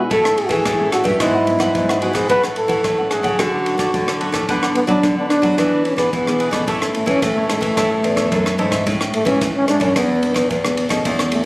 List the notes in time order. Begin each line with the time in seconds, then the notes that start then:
0.10 A2 A3 C#4 E4 A4 C#5 E5, kick, ride
0.24 A3 C#4 E4 A4 C#5 E5, cross-stick
0.37 G#4, muted cavaquinho stroke, ride
0.46 E3 F#4 E5
0.51 G#4 A4 C#5, kick, ride
0.65 A2 E3, kick, cross-stick, ride
0.79 A3 C#4 E4 A4 C#5 E5
0.91 E4 F#4 A4 C#5 E5, cross-stick, ride
1.04 G2 A4 C#5 E5, kick, ride
1.19 G#2 F#3 B3 E4 G#4 B4 F#5, kick, cross-stick, ride
1.34 G#4 B4 F#5
1.47 F#3 B3 E4, muted cavaquinho stroke, ride
1.59 G#2 G#4 B4 F#5, kick, cross-stick, ride
1.75 G#2 F#3 B3 E4, kick, ride
1.89 G#4 B4 F#5, cross-stick
2.01 F#3 B3 E4 F#4 G#4 B4 F#5, ride
2.13 G#2 G#4 B4 F#5, kick, cross-stick, ride
2.29 A2 F#3 C#4 E4 F#4 A4 B4 C#5 F#5, kick, ride
2.43 F#3 C#4 E4 A4 C#5 F#5, cross-stick
2.56 A4, muted cavaquinho stroke, ride
2.68 E3 A4 C#5 F#5, kick, ride
2.84 A2 E3, kick, cross-stick, ride
2.98 F#3 C#4 E4 A4 C#5 F#5
3.10 F#4 G#4 A4 C#5 F#5, cross-stick, ride
3.23 C#3 F#3 A3 C#4 A4 C#5 F#5, kick, ride
3.39 D3 F#4 A4 C#5 D5, kick, cross-stick, ride
3.53 A4 C#5 D5
3.65 muted cavaquinho stroke, ride
3.78 D3 A4 C#5 D5, kick, cross-stick, ride
3.94 A2 D3 F#3 A3 C#4, kick, ride
4.08 A4 C#5 D5, cross-stick
4.20 F#3 A3 C#4 F#4 A4 C#5 D5, ride
4.32 A2 A4 C#5 D5, kick, cross-stick, ride
4.48 D3 F#3 B3 D4 B4 D5 F#5, kick, ride
4.62 B4 D5 F#5, cross-stick
4.75 B3, muted cavaquinho stroke, ride
4.87 F#3 B3 D4 B4 D5 F#5, kick, ride
5.03 D3, kick, cross-stick, ride
5.17 F#3 B3 D4 B4 D5 F#5
5.29 D4 B4 D5 F#5, cross-stick, ride
5.42 F#3 B3 D4 G#4 B4 D5 F#5, kick, ride
5.57 E3 E4 G#4 B4 D5, kick, cross-stick, ride
5.71 G#4 B4 D5
5.84 C#4, muted cavaquinho stroke, ride
5.96 E3 B3 D4 G#4 B4 D5, kick, cross-stick, ride
6.13 B2 E3 B3, kick, ride
6.26 B3 D4 G#4 B4 D5, cross-stick
6.39 E4 G#4 B4 D5, ride
6.51 B2 E3 A3 C#4 G#4 B4 D5, kick, cross-stick, ride
6.67 A2 E4 A4 C#5 E5, kick, ride
6.81 E3 A3 C#4 A4 C#5 E5, cross-stick
6.93 A3, muted cavaquinho stroke, ride
7.06 E3 A3 C#4 A4 C#5 E5, kick, ride
7.22 A2 E3 A3, kick, cross-stick, ride
7.35 E3 A3 C#4 A4 C#5 E5
7.48 A3 E4 A4 C#5 E5, cross-stick, ride
7.61 E3 A4 C#5 E5, kick, ride
7.76 A2 E3 A3 C#4 E4 A4 C#5 E5, kick, cross-stick, ride
7.90 A4 C#5 E5
8.03 E2, muted cavaquinho stroke, ride
8.16 A4 C#5 E5, kick, cross-stick, ride
8.32 F#2 E3 A3 C#4, kick, ride
8.45 A4 C#5 E5, cross-stick
8.58 G#2 E3 A3 C#4 E4 A4 C#5 E5, ride
8.71 A4 C#5 E5, kick, cross-stick, ride
8.87 A2 G#3 C#4 E4, kick, ride
9.01 cross-stick
9.14 A3, ride
9.25 E3 G#3 C#4 E4, kick, ride
9.41 A2 E3, kick, cross-stick, ride
9.56 C#4
9.68 G#3 C#4 D4 E4, cross-stick, ride
9.80 F#2 C#4, kick, ride
9.96 E2 E3 B3 D4 G#4, kick, cross-stick, ride
10.23 B3 D4 G#4, ride
10.34 E2, kick, cross-stick, ride
10.50 E2 B2, kick, ride
10.65 B3 D4 G#4, cross-stick
10.77 ride
10.89 B2 A3 C#4 G#4, kick, cross-stick, ride
11.05 E2 E3, kick, ride
11.19 cross-stick
11.32 A3 C#4 G#4, ride